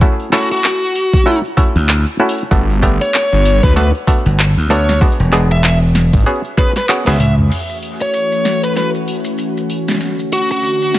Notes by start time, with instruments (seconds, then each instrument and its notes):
0.01 clav A3 C#4 E4 F#4, kick, open hi-hat
0.20 open hi-hat
0.32 clav A3 C#4 E4 A4, lead electric guitar F#4, clap, open hi-hat
0.43 open hi-hat
0.51 lead electric guitar F#4, open hi-hat
0.53 open hi-hat
0.64 clap, open hi-hat
0.83 open hi-hat
0.95 open hi-hat
1.13 kick, open hi-hat
1.26 clav A3 C#4 E4 F#4, open hi-hat
1.45 open hi-hat
1.57 clav A3 C#4 E4 F#4, kick, open hi-hat
1.76 slap bass D2, open hi-hat
1.89 clap, open hi-hat
2.07 open hi-hat
2.20 clav A3 C#4 E4 F#4
2.29 open hi-hat
2.38 open hi-hat
2.51 detuned saw bass G1, clav A3 B3 D4 F#4, kick, open hi-hat
2.70 open hi-hat
2.82 clav A3 B3 D4 G4, kick, open hi-hat
3.01 lead electric guitar C#5, open hi-hat
3.14 clap, open hi-hat
3.32 detuned saw bass G1, open hi-hat
3.45 open hi-hat
3.63 detuned saw bass D2, lead electric guitar B4, kick, open hi-hat
3.76 clav A3 B3 D4 F#4, lead electric guitar B4, snare, open hi-hat
3.95 open hi-hat
4.07 clav A3 B3 D4 F#4, kick, open hi-hat
4.26 slap bass G1, open hi-hat
4.39 clap, open hi-hat
4.57 slap bass D2, open hi-hat
4.70 clav A3 B3 D4 F#4, lead electric guitar C#5, open hi-hat
4.89 snare, open hi-hat
4.91 open hi-hat
4.97 clav G#3 B3 D4 F#4, kick, open hi-hat
5.02 open hi-hat
5.08 open hi-hat
5.12 open hi-hat
5.20 slap bass E1, open hi-hat
5.32 clav G#3 B3 D4 G#4, clap, open hi-hat
5.52 lead electric guitar E5
5.64 lead electric guitar E5, clap, open hi-hat
5.82 open hi-hat
5.89 open hi-hat
5.95 snare, open hi-hat
6.04 open hi-hat
6.13 detuned saw bass G#1, kick, open hi-hat
6.17 open hi-hat
6.20 open hi-hat
6.23 clav C#4 F#4 G#4, open hi-hat
6.26 clav B3, open hi-hat
6.31 open hi-hat
6.35 open hi-hat
6.40 open hi-hat
6.45 open hi-hat
6.57 clav B3 C#4 F#4 G#4, lead electric guitar B4, kick
6.76 lead electric guitar B4, snare, open hi-hat
6.89 clav B3 C#4 F#4 G#4, clap, open hi-hat
7.07 slap bass C#2, clav B3 C#4 F#4 G#4, lead electric guitar E5, snare, open hi-hat
7.20 lead electric guitar E5, open hi-hat, mid tom
7.38 mid tom
7.52 ambient pad E3 A3 C#4 F#4, open hi-hat, crash, maracas
7.69 open hi-hat, maracas
7.83 open hi-hat
8.00 lead electric guitar C#5, open hi-hat, maracas
8.13 open hi-hat, maracas
8.32 open hi-hat, maracas
8.45 snare, open hi-hat
8.63 lead electric guitar B4, open hi-hat, maracas
8.75 lead electric guitar B4, snare, open hi-hat, maracas
8.94 open hi-hat, maracas
9.08 open hi-hat
9.24 open hi-hat, maracas
9.38 open hi-hat, maracas
9.57 open hi-hat, maracas
9.70 open hi-hat
9.88 snare, open hi-hat, maracas
9.91 snare
9.95 snare
9.97 snare, maracas
10.01 ambient pad D3 A3 F#4, snare, open hi-hat
10.06 snare
10.10 snare
10.15 snare
10.19 open hi-hat, maracas
10.32 lead electric guitar F#4, open hi-hat
10.50 lead electric guitar F#4, open hi-hat, maracas
10.63 open hi-hat, maracas
10.82 open hi-hat, maracas
10.94 snare, open hi-hat